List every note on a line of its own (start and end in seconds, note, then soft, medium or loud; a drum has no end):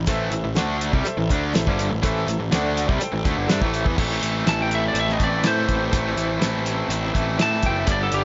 0.06 0.30 A1 medium
0.06 0.31 A2 medium
0.06 0.32 E3 medium
0.06 0.32 A3 medium
0.06 0.47 A4 medium
0.06 0.47 C5 medium
0.06 0.48 E5 loud
0.06 kick loud
0.06 closed hi-hat loud
0.06 shaker medium
0.31 0.43 A1 medium
0.31 0.43 A2 medium
0.31 0.43 E3 medium
0.31 closed hi-hat medium
0.31 shaker medium
0.44 0.55 A1 medium
0.44 0.55 A2 medium
0.44 0.56 E3 medium
0.55 0.90 D2 loud
0.55 0.92 D3 medium
0.55 0.92 A3 medium
0.55 0.93 D4 loud
0.55 0.95 A4 medium
0.55 0.96 C5 medium
0.55 0.96 F#5 medium
0.55 snare loud
0.55 closed hi-hat loud
0.55 shaker medium
0.81 closed hi-hat medium
0.92 1.04 C2 loud
0.92 1.04 C3 medium
0.92 1.05 G3 medium
0.92 kick loud
1.05 1.44 A4 medium
1.05 1.45 C5 medium
1.05 1.46 E5 medium
1.05 muted picked electric bass stroke soft
1.05 muted overdriven electric guitar stroke medium
1.05 closed hi-hat medium
1.05 shaker medium
1.17 1.29 A1 medium
1.17 1.29 A2 medium
1.17 1.30 E3 medium
1.30 1.53 D2 medium
1.30 1.54 D3 medium
1.30 1.54 A3 medium
1.30 1.54 D4 loud
1.30 kick medium
1.30 closed hi-hat medium
1.30 shaker medium
1.54 1.66 A1 medium
1.54 1.66 A2 medium
1.54 1.67 E3 medium
1.54 1.94 A4 medium
1.54 1.94 C5 medium
1.54 1.94 E5 medium
1.54 snare loud
1.54 closed hi-hat medium
1.54 shaker medium
1.66 1.90 G1 medium
1.66 1.90 G2 medium
1.66 1.90 D3 medium
1.66 1.91 G3 medium
1.66 kick loud
1.79 closed hi-hat medium
1.79 shaker medium
1.90 2.02 A1 medium
1.90 2.01 A2 medium
1.90 2.01 E3 medium
2.02 2.26 A1 medium
2.02 2.26 A2 loud
2.02 2.27 E3 medium
2.02 2.27 A3 medium
2.02 2.43 A4 medium
2.02 2.43 C5 medium
2.02 2.44 E5 loud
2.02 kick loud
2.02 closed hi-hat medium
2.02 shaker medium
2.27 2.39 A1 medium
2.27 2.38 A2 medium
2.27 2.38 E3 medium
2.27 closed hi-hat medium
2.27 shaker medium
2.39 2.51 A1 medium
2.39 2.51 A2 medium
2.39 2.52 E3 medium
2.51 2.86 D2 loud
2.51 2.87 D3 medium
2.51 2.88 A3 medium
2.51 2.88 D4 loud
2.51 2.91 A4 medium
2.51 2.92 C5 medium
2.51 2.92 F#5 medium
2.51 snare loud
2.51 closed hi-hat loud
2.51 shaker medium
2.77 closed hi-hat medium
2.77 shaker medium
2.88 3.00 C2 medium
2.88 3.00 C3 medium
2.88 3.00 G3 medium
2.88 kick medium
3.00 3.40 A4 medium
3.00 3.40 C5 medium
3.00 3.41 G5 medium
3.00 muted overdriven electric guitar stroke medium
3.00 muted picked electric bass stroke soft
3.00 closed hi-hat medium
3.00 shaker medium
3.13 3.24 A1 medium
3.13 3.25 A2 medium
3.13 3.26 E3 medium
3.25 3.36 D2 loud
3.25 3.37 D3 medium
3.25 3.37 A3 medium
3.25 kick loud
3.25 closed hi-hat medium
3.25 shaker medium
3.36 3.48 G1 medium
3.36 3.49 G2 medium
3.36 3.49 D3 medium
3.47 3.61 G2 medium
3.47 3.61 G3 medium
3.47 3.62 D4 medium
3.47 3.88 A4 medium
3.47 3.88 C5 medium
3.47 3.89 E5 medium
3.47 snare loud
3.47 closed hi-hat medium
3.47 shaker medium
3.61 3.84 A1 medium
3.61 3.85 A2 medium
3.61 3.85 E3 medium
3.61 3.86 A3 medium
3.61 kick medium
3.74 closed hi-hat medium
3.74 shaker medium
3.86 3.97 E2 medium
3.86 3.96 E3 medium
3.86 3.98 B3 medium
3.86 kick loud
3.97 4.19 A1 medium
3.97 5.43 A2 medium
3.97 4.46 E3 medium
3.97 5.17 A3 loud
3.97 4.24 C4 medium
3.97 4.22 E4 medium
3.97 4.21 A4 medium
3.97 kick loud
3.97 crash loud
4.21 4.43 A1 medium
4.21 4.46 C4 medium
4.21 4.47 E4 medium
4.21 4.48 A4 medium
4.21 closed hi-hat medium
4.46 4.88 A1 medium
4.46 5.44 E3 medium
4.46 4.72 C4 medium
4.46 4.71 E4 medium
4.46 4.69 A4 medium
4.46 4.60 A5 loud
4.46 snare loud
4.46 closed hi-hat loud
4.62 4.73 G5 medium
4.69 5.44 C4 medium
4.69 5.44 E4 medium
4.69 5.45 A4 medium
4.69 closed hi-hat medium
4.75 4.85 E5 medium
4.88 5.00 D5 medium
4.94 5.16 A1 medium
4.94 closed hi-hat medium
5.00 5.12 E5 medium
5.09 5.22 D#5 medium
5.09 snare soft
5.18 5.41 A1 medium
5.18 5.41 A2 medium
5.18 5.43 E3 medium
5.18 5.42 A3 medium
5.18 kick medium
5.18 closed hi-hat medium
5.24 5.46 D5 medium
5.43 5.91 A2 medium
5.43 5.65 A2 medium
5.43 5.92 E3 medium
5.43 5.92 A3 medium
5.43 5.70 C4 medium
5.43 5.69 E4 medium
5.43 5.67 A4 medium
5.43 6.88 C5 medium
5.43 snare loud
5.43 closed hi-hat medium
5.68 5.89 A1 medium
5.68 5.92 C4 medium
5.68 5.93 E4 medium
5.68 5.94 A4 medium
5.68 kick medium
5.68 closed hi-hat medium
5.92 6.14 A1 medium
5.92 6.41 A2 medium
5.92 6.39 E3 medium
5.92 7.13 A3 medium
5.92 6.18 C4 medium
5.92 6.16 E4 medium
5.92 6.14 A4 loud
5.92 kick loud
5.92 closed hi-hat loud
6.16 6.38 A1 medium
6.16 6.40 C4 medium
6.16 6.41 E4 medium
6.16 6.42 A4 medium
6.16 closed hi-hat medium
6.40 6.83 A1 medium
6.40 6.90 E3 medium
6.40 6.67 C4 medium
6.40 6.66 E4 medium
6.40 6.64 A4 medium
6.40 snare loud
6.40 closed hi-hat loud
6.65 7.38 C4 medium
6.65 7.39 E4 medium
6.65 7.40 A4 medium
6.65 closed hi-hat medium
6.89 7.10 A1 medium
6.89 closed hi-hat medium
7.14 7.36 A1 medium
7.14 7.37 A2 medium
7.14 7.38 E3 medium
7.14 7.37 A3 medium
7.14 kick medium
7.14 closed hi-hat medium
7.38 7.86 A2 loud
7.38 7.60 A2 loud
7.38 7.86 E3 medium
7.38 7.87 A3 medium
7.38 7.65 C4 loud
7.38 7.63 E4 loud
7.38 7.61 A4 loud
7.38 snare loud
7.38 closed hi-hat medium
7.42 7.65 A5 medium
7.62 7.84 F#1 medium
7.62 7.88 C4 medium
7.62 7.87 E4 medium
7.62 7.86 A4 medium
7.62 7.80 G5 medium
7.62 kick medium
7.62 closed hi-hat medium
7.80 7.90 E5 medium
7.87 8.08 G1 medium
7.87 8.24 G2 medium
7.87 8.24 D3 medium
7.87 8.14 G3 medium
7.87 8.13 B3 medium
7.87 8.12 D4 medium
7.87 8.11 G4 medium
7.87 kick loud
7.87 closed hi-hat loud
7.92 8.02 D5 medium
8.03 8.13 A4 medium
8.11 8.24 G1 medium
8.11 8.24 G3 medium
8.11 8.24 B3 medium
8.11 8.24 D4 medium
8.11 8.24 G4 medium
8.11 closed hi-hat medium